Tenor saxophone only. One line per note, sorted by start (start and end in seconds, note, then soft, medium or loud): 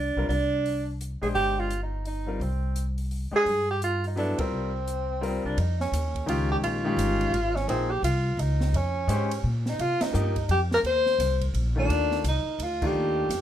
0.00 0.28 D4 medium
0.29 0.96 D4 medium
1.22 1.28 G#4 medium
1.35 1.61 G4 loud
1.60 1.82 F4 medium
1.83 2.04 D#4 medium
2.07 2.43 D#4 medium
2.42 2.87 C4 medium
3.36 3.67 G#4 loud
3.71 3.82 G4 medium
3.84 4.03 F4 medium
4.07 4.18 D#4 medium
4.18 4.38 D4 medium
4.40 5.41 C4 medium
5.45 5.60 D4 medium
5.59 5.80 D#4 medium
5.81 6.25 C#4 medium
6.29 6.49 F4 medium
6.52 6.57 G4 medium
6.64 7.57 F4 loud
7.56 7.68 C#4 medium
7.70 7.92 C4 medium
7.91 8.03 G4 medium
8.04 8.42 F4 medium
8.40 8.77 D#4 medium
8.76 9.45 C#4 loud
9.69 9.82 D#4 medium
9.81 10.04 F4 loud
10.02 10.50 D#4 loud
10.51 10.60 G4 medium
10.74 10.79 A#4 loud
10.86 11.44 C5 loud
11.79 12.23 D4 loud
12.28 12.65 D#4 medium
12.63 12.88 F4 medium
12.87 13.41 G4 loud